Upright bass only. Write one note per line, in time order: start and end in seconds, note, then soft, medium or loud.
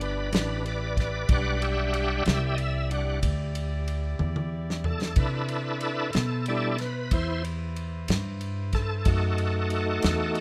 0.00 0.30 G1 medium
0.33 1.27 A1 medium
1.29 2.23 B1 medium
2.26 3.21 C2 medium
3.23 4.18 D2 medium
4.20 5.14 E2 medium
5.16 6.11 C3 medium
6.15 7.09 B2 medium
7.12 8.06 E2 medium
8.09 9.03 G2 medium
9.06 10.01 F#2 medium
10.04 10.40 E2 medium